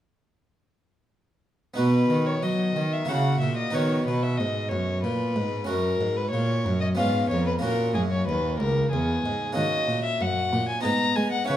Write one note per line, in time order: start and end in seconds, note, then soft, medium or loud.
1.74 2.08 B2 soft
1.74 3.03 B3 soft
1.74 3.03 D#4 soft
1.74 3.04 F#4 soft
1.74 2.28 B4 medium
1.78 2.07 B2 soft
2.10 2.42 D#3 soft
2.10 2.40 D#3 soft
2.26 2.44 C#5 medium
2.43 2.75 F#3 soft
2.43 2.72 F#3 soft
2.43 2.94 D#5 medium
2.76 3.05 D#3 soft
2.76 3.08 D#3 soft
2.93 3.10 E5 medium
3.05 3.40 C#3 soft
3.05 3.70 A#3 soft
3.05 3.71 E4 soft
3.05 3.72 F#4 soft
3.05 3.39 F#5 medium
3.10 3.39 C#3 soft
3.40 3.73 A#2 soft
3.40 3.71 A#2 soft
3.40 3.56 E5 medium
3.57 3.76 D#5 medium
3.70 4.06 D#3 medium
3.70 5.63 B3 soft
3.70 5.63 D#4 soft
3.70 5.64 F#4 soft
3.75 4.04 D#3 soft
3.75 4.06 C#5 medium
4.07 4.41 B2 soft
4.07 4.37 B2 soft
4.07 4.24 B4 medium
4.22 4.39 E5 medium
4.37 4.73 G#2 soft
4.37 4.69 G#2 soft
4.37 4.70 D#5 soft
4.69 5.00 F#2 soft
4.69 5.05 F#2 soft
4.69 5.02 C#5 medium
5.03 5.37 A#2 soft
5.03 5.33 A#2 soft
5.03 5.67 B4 medium
5.36 5.68 G#2 soft
5.36 5.65 G#2 soft
5.64 6.00 F#2 medium
5.64 5.98 C#4 soft
5.64 6.93 F#4 soft
5.69 5.98 F#2 soft
5.69 6.18 A#4 medium
6.01 6.33 G#2 soft
6.01 6.30 G#2 soft
6.17 6.30 B4 medium
6.31 6.67 A#2 medium
6.31 6.62 A#2 soft
6.31 6.80 C#5 medium
6.65 6.98 F#2 soft
6.65 6.95 F#2 soft
6.81 6.87 D#5 medium
6.95 7.30 G#2 soft
6.95 7.60 B3 soft
6.95 7.60 C#4 soft
6.95 7.61 F4 soft
6.95 7.29 F5 medium
7.00 7.28 G#2 soft
7.30 7.63 F2 soft
7.30 7.60 F2 soft
7.30 7.46 C#5 medium
7.46 7.53 B4 medium
7.59 9.50 A#3 soft
7.59 9.51 C#4 soft
7.59 9.51 F#4 soft
7.59 7.93 A#4 medium
7.64 7.92 A#2 soft
7.64 7.97 A#2 medium
7.94 8.24 F#2 soft
7.94 8.28 F#2 soft
7.94 8.01 G#4 medium
8.11 8.26 C#5 medium
8.27 8.62 D#2 soft
8.27 8.57 D#2 soft
8.27 8.59 B4 medium
8.59 8.91 C#2 soft
8.59 8.89 C#2 soft
8.59 8.91 A#4 medium
8.91 9.23 E2 soft
8.91 9.21 E2 soft
8.91 9.54 G#4 medium
9.24 9.56 G#2 soft
9.24 9.54 G#2 soft
9.53 9.86 D#3 medium
9.53 10.79 A#3 soft
9.53 10.79 C#4 soft
9.53 10.80 F#4 soft
9.53 10.03 D#5 medium
9.57 9.86 D#3 soft
9.88 10.18 A#2 medium
9.88 10.17 A#2 soft
10.04 10.22 E5 medium
10.21 10.49 F#2 soft
10.21 10.51 F#2 medium
10.21 10.68 F#5 medium
10.53 10.83 A#2 medium
10.53 10.82 A#2 soft
10.69 10.83 G#5 medium
10.80 11.45 B3 soft
10.80 11.46 D#4 soft
10.80 11.46 G#4 soft
10.80 11.17 A#5 medium
10.85 11.14 G#2 soft
10.85 11.15 G#2 medium
11.16 11.46 G#3 soft
11.16 11.47 G#3 soft
11.16 11.31 G#5 medium
11.32 11.47 F#5 medium
11.45 11.57 C#4 soft
11.45 11.57 E4 soft
11.45 11.57 B4 soft
11.45 11.57 C#5 medium
11.49 11.57 C#3 soft
11.49 11.57 C#3 medium